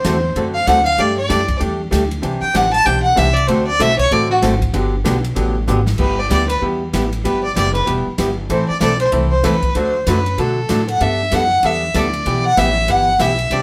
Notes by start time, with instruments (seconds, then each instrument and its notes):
Already playing: fiddle C5
0.04 upright bass E2, hollow-body jazz guitar D3 A3 C4 F#4 A4, kick, snare, hi-hat pedal, ride
0.36 upright bass F#2, hollow-body jazz guitar D3 A3 C4 F#4 A4, kick, ride
0.54 fiddle F5
0.66 upright bass D2, hollow-body jazz guitar D3 A3 C4 F#4 A4, fiddle F#5, kick, snare, hi-hat pedal, ride
0.86 fiddle F5, ride
0.98 upright bass G2, hollow-body jazz guitar G3 A3 D4 G4, fiddle D5, kick, ride
1.18 fiddle D5
1.29 upright bass F#2, hollow-body jazz guitar G3 A3 D4 G4, kick, snare, hi-hat pedal, ride
1.48 kick, ride
1.60 upright bass E2, hollow-body jazz guitar G3 A3 D4 G4, kick, ride
1.91 upright bass D2, hollow-body jazz guitar G3 A3 D4 G4, kick, snare, hi-hat pedal, ride
2.11 ride
2.22 upright bass C2, hollow-body jazz guitar C3 E3 D4 G4, kick, ride
2.41 fiddle G5, muted upright bass stroke
2.54 upright bass A1, hollow-body jazz guitar C3 E3 D4 G4, fiddle F#5, kick, snare, hi-hat pedal, ride
2.73 fiddle A5, ride
2.85 upright bass B1, hollow-body jazz guitar C3 E3 D4 G4, fiddle G5, kick, ride
3.03 fiddle F#5
3.16 upright bass C2, hollow-body jazz guitar C3 E3 D4 G4, fiddle E5, kick, snare, hi-hat pedal, ride
3.34 fiddle D5, ride
3.47 upright bass D2, hollow-body jazz guitar D3 A3 C4 F#4 A4, fiddle C5, kick, ride
3.67 fiddle D5
3.79 upright bass B1, hollow-body jazz guitar D3 A3 C4 F#4 A4, fiddle E5, kick, snare, hi-hat pedal, ride
3.99 fiddle C#5, kick, ride
4.11 upright bass A1, hollow-body jazz guitar D3 A3 C4 F#4 A4, fiddle D5, kick, ride
4.31 fiddle F#4
4.42 upright bass G#1, hollow-body jazz guitar D3 A3 C4 F#4 A4, kick, snare, hi-hat pedal, ride
4.62 kick, ride
4.73 upright bass G1, hollow-body jazz guitar D3 F#3 B3 D4 G4, kick, ride
5.04 upright bass B1, hollow-body jazz guitar D3 F#3 B3 D4 G4, kick, snare, hi-hat pedal, ride
5.24 ride
5.35 upright bass A1, hollow-body jazz guitar D3 F#3 B3 D4 G4, kick, ride
5.67 upright bass G#1, hollow-body jazz guitar D3 F#3 B3 D4 G4, hi-hat pedal
5.86 snare
5.98 upright bass G1, hollow-body jazz guitar G3 B3 E4 G4, fiddle B4, kick, crash
6.18 fiddle D5
6.30 upright bass D2, hollow-body jazz guitar G3 B3 E4 G4, fiddle D5, kick, snare, hi-hat pedal, ride
6.49 fiddle B4, ride
6.62 upright bass E2, hollow-body jazz guitar G3 B3 E4 G4, kick
6.93 upright bass A1, hollow-body jazz guitar G3 B3 E4 G4, kick, snare, hi-hat pedal, ride
7.13 ride
7.24 upright bass G1, hollow-body jazz guitar G3 B3 E4 G4, fiddle B4, kick, ride
7.44 fiddle D5
7.56 upright bass F#1, hollow-body jazz guitar G3 B3 E4 G4, fiddle D5, kick, snare, hi-hat pedal, ride
7.74 fiddle B4, ride
7.86 upright bass E1, hollow-body jazz guitar G3 B3 E4 G4, kick, ride
8.06 muted upright bass stroke
8.18 upright bass G1, hollow-body jazz guitar G3 B3 E4 G4, kick, snare, hi-hat pedal, ride
8.50 upright bass A1, hollow-body jazz guitar E3 A3 C4 E4 A4, fiddle C5, kick, ride
8.69 fiddle D5, muted upright bass stroke
8.80 upright bass B1, hollow-body jazz guitar E3 A3 C4 E4 A4, fiddle D5, kick, snare, hi-hat pedal, ride
9.00 fiddle C5, ride
9.12 upright bass C2, hollow-body jazz guitar E3 A3 C4 E4 A4, kick, ride
9.31 fiddle C5
9.44 upright bass E2, hollow-body jazz guitar E3 A3 C4 E4 A4, fiddle B4, kick, snare, hi-hat pedal, ride
9.62 kick, ride
9.74 upright bass D2, hollow-body jazz guitar D3 F#3 A3 D4 F#4, fiddle C5, kick, ride
10.07 upright bass F#2, hollow-body jazz guitar D3 F#3 A3 D4 F#4, fiddle B4, kick, snare, hi-hat pedal, ride
10.26 ride
10.38 upright bass B2, hollow-body jazz guitar D3 F#3 A3 D4 F#4, fiddle A4, kick, ride
10.69 upright bass A2, hollow-body jazz guitar D3 F#3 A3 D4 F#4, kick, snare, hi-hat pedal, ride
10.88 fiddle F#5, ride
11.00 upright bass G2, hollow-body jazz guitar G3 B3 D4 A4, fiddle E5, kick, ride
11.31 upright bass F#2, hollow-body jazz guitar G3 B3 D4 A4, fiddle F#5, kick, snare, hi-hat pedal, ride
11.63 upright bass E2, hollow-body jazz guitar G3 B3 D4 A4, fiddle E5, kick, ride
11.94 upright bass D2, hollow-body jazz guitar G3 B3 D4 A4, fiddle D5, kick, snare, hi-hat pedal, ride
12.13 ride
12.26 upright bass B1, hollow-body jazz guitar E3 B3 E4 G4, kick, ride
12.44 fiddle F#5
12.57 upright bass A1, hollow-body jazz guitar E3 B3 E4 G4, fiddle E5, kick, snare, hi-hat pedal, ride
12.88 upright bass G1, hollow-body jazz guitar E3 B3 E4 G4, fiddle F#5, kick, ride
13.19 upright bass B1, hollow-body jazz guitar E3 B3 E4 G4, fiddle E5, kick, snare, hi-hat pedal, ride
13.38 ride
13.50 upright bass C2, hollow-body jazz guitar C3 G3 C4 D4 G4, fiddle D5, kick, ride